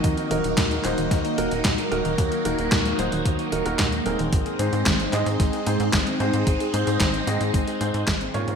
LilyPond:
<<
  \new Staff \with { instrumentName = "Grand piano" } { \time 4/4 \key ees \dorian \tempo 4 = 112 <ees bes ees' ges' bes'>8 <ees bes ees' ges' bes'>4 <ees bes ees' ges' c''>4 <ees bes ees' ges' bes'>16 r8. <ees bes ees' ges' bes'>8~ | <ees bes ees' ges' bes'>8 <ees bes ees' ges' bes'>4 <ees bes ees' ges' c''>4 <ees bes ees' ges' bes'>16 <ees bes ees' ges' bes'>16 r8 <aes, c' ees' aes' bes'>8~ | <aes, c' ees' aes' bes'>8 <aes, c' ees' aes' c''>4 <aes, c' ees' aes' ees''>4 <aes, c' ees' aes' c''>16 r8. <aes, c' ees' aes' c''>8~ | <aes, c' ees' aes' c''>8 <aes, c' ees' aes' c''>4 <aes, c' ees' aes' ees''>4 <aes, c' ees' aes' c''>16 r8. <bes, des' f' bes' des''>8 | }
  \new Staff \with { instrumentName = "String machine" } { \time 4/4 \key ees \dorian <ges bes ees'>1~ | <ges bes ees'>1 | <aes c' ees'>1~ | <aes c' ees'>1 | }
  \new Staff \with { instrumentName = "Synth arpeggio sound" } { \clef bass \time 4/4 \key ees \dorian ees16 ees'16 ees16 ees'16 bes,16 aes16 bes16 ees16 ees16 ees'16 ees16 ees'16 bes,16 aes16 bes16 ees16 | ees16 ees'16 ees16 ees'16 bes,16 aes16 bes16 ees16 ees16 ees'16 ees16 ees'16 bes,16 aes16 bes16 ees16 | aes16 aes'16 aes16 aes'16 ees16 c'16 ees'16 aes16 aes16 aes'16 aes16 aes'16 ees16 c'16 ees'16 aes16 | aes16 aes'16 aes16 aes'16 ees16 c'16 ees'16 aes16 aes16 aes'16 aes16 aes'16 ees16 c'16 ees'16 aes16 | }
  \new Staff \with { instrumentName = "Analog synth bass" } { \clef bass \time 4/4 \key ees \dorian ees,16 r16 ees,,16 ees,,16 ees,8 ees,,16 ees,,16 ees,16 r16 ees,,16 ees,,16 ees,16 r16 ees,,16 ees,,16 | ees,16 r16 ees,,16 ees,,16 ees,8 ees,,16 ees,,16 ees,16 r16 ees,,16 ees,,16 ees,8 ees,,16 ees,,16 | aes,,16 r16 aes,16 aes,16 aes,,8 aes,16 aes,16 aes,,16 r16 aes,16 aes,16 aes,,16 r16 aes,16 aes,16 | aes,,16 r16 aes,16 aes,16 aes,,8 aes,16 aes,16 aes,,16 r16 aes,16 aes,16 aes,,8 aes,16 aes,16 | }
  \new DrumStaff \with { instrumentName = "Drums" } \drummode { \time 4/4 <hh bd>16 hh16 hh16 hh16 <hc hh bd sn>16 hh16 <hc hh>16 hh16 <hh bd sn>16 hh16 hh16 hh16 <hc hh bd sn>16 hh16 hh16 hh16 | <hh bd>16 hh16 hh16 hh16 <hc hh bd sn>16 hh16 hh16 hh16 <hh bd>16 hh16 hh16 hh16 <hc hh bd sn>16 hh16 hh16 hh16 | <hh bd>16 hh16 hh16 hh16 <hc hh bd sn>16 hh16 <hc hh>16 hh16 <hh bd sn>16 hh16 hh16 hh16 <hc hh bd sn>16 hh16 hh16 hh16 | <hh bd>16 hh16 hh16 hh16 <hc hh bd sn>16 hh16 hh16 hh16 <hh bd>16 hh16 hh16 hh16 <hc hh bd sn>16 hh16 hh16 hh16 | }
>>